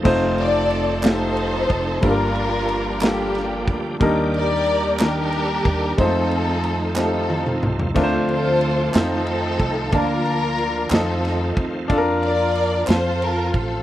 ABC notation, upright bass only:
X:1
M:6/8
L:1/8
Q:3/8=61
K:Fmix
V:1 name="Upright bass" clef=bass
F,,,4- F,,, F,,, | G,,,4- G,,, D,, | E,,4- E,, E,, | F,,4- F,, C,, |
D,,3 F,,2 C,, | D,,3 F,,2 E,, | F,,3 F,,2 A,,, |]